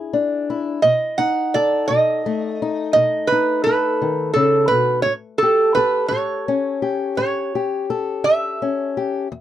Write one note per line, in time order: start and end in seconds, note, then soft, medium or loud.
0.00 0.41 E2 medium
0.00 0.12 D4 medium
0.00 0.48 E4 medium
0.00 0.79 G#4 medium
0.13 0.79 D4 medium
0.50 0.80 E4 medium
0.82 1.47 B2 medium
0.82 1.19 D#5 medium
1.18 2.59 D#4 medium
1.18 1.54 F#5 loud
1.54 3.66 A4 medium
1.54 1.87 D5 loud
1.88 2.53 B2 medium
1.88 2.92 D#5 medium
2.26 6.48 A3 medium
2.62 3.31 D#4 medium
2.93 3.59 B2 medium
2.93 3.30 D#5 loud
3.27 3.62 B4 medium
3.32 5.03 D#4 medium
3.64 5.03 A4 medium
3.64 4.33 B4 medium
4.02 4.35 D#3 medium
4.33 4.71 C#3 medium
4.33 4.71 A4 medium
4.68 5.06 B2 medium
4.68 5.02 B4 medium
5.02 5.70 A2 medium
5.02 5.12 C#5 medium
5.38 5.72 A4 medium
5.43 6.81 G4 medium
5.75 7.89 A4 medium
5.75 6.08 B4 medium
6.08 6.75 A2 medium
6.08 7.12 C#5 medium
6.48 8.60 C#4 medium
6.82 7.53 G4 medium
7.17 7.82 A2 medium
7.17 7.84 C#5 medium
7.55 8.96 G4 medium
7.90 9.27 A4 medium
8.24 8.88 A2 medium
8.24 9.41 E5 medium
8.62 9.27 C#4 medium
8.97 9.27 G4 medium
9.32 9.41 E2 medium